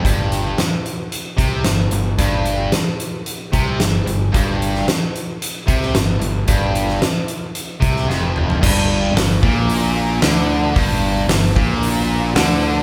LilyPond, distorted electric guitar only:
\new Staff \with { instrumentName = "Distorted electric guitar" } { \clef bass \time 4/4 \key g \minor \tempo 4 = 112 g,4 r4. c8 g,8 g,8 | g,4 r4. c8 g,8 g,8 | g,4 r4. c8 g,8 g,8 | g,4 r4. c8 f,4 |
g,4 g,8 bes,4. d4 | g,4 g,8 bes,4. d4 | }